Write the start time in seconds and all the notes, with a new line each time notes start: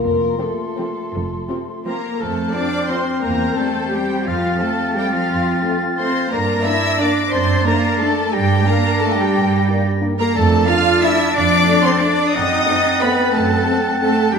0.02 F1 F2 A#3 F4 A#4 C6
0.38 C3 F3 A3 C4 A4
0.77 C3 F3 C4
1.13 F1 F2
1.49 C3 F3 C4
1.86 C3 F3 A#3 C4 A#4 A#5
2.20 F2 A3 C4 A4 C5 A5 F6
2.54 F3 C4 D4 D5 D6
2.89 F3 C4 C5 C6
3.22 E2 A#3 A#4 A#5 G6
3.56 G3 A3 C4 A4 A5
3.91 G3 C4 G4 G5
4.25 F2 F3 C4 F4 F5 A6
4.58 A3 C4 A4 A5
4.95 G3 A3 C4 G4 G5
5.12 F3 F4 F5
5.29 F2
5.62 A3 C4
5.98 A3 C4 C5 C6
6.31 G2 A#3 D4 A#4 D5 A#5 A#6
6.64 A#3 D4 E4 E5 E6
6.99 A#3 D4 D5 D6
7.32 F#2 C4 C5 C6 A6
7.65 A3 A#3 D4 A#4 A#5
8.01 A3 D4 A4 A5
8.33 G2 G3 D4 G4 D5 G5 A#6
8.67 A#3 D4 A#4 A#5
9.00 A3 A#3 D4 A4 A5
9.17 G3 G4 G5
9.34 G2
9.69 A#3 D4
10.01 A#3 D4
10.18 A#3 A#4 A#5
10.34 F2 A3 D4 A4 D5 A5 A6
10.66 A3 D4 F4 F5 F6
11.01 A3 D4 E4 E5 E6
11.34 F2 D4 D5 D6
11.65 A3 D4
11.84 C4 C5 C6
12.00 A3 D4 D5 D6
12.32 F#2 C4 D#4 D#5 F#5 D#6 A6
12.66 A3 C4
13.01 A3 B3 C4 B4 B5
13.32 F#2 A3 A4 A5
13.66 A3 C4
14.00 A3 C4 A4 A5
14.33 G2 G3 D4 G4 G5 B6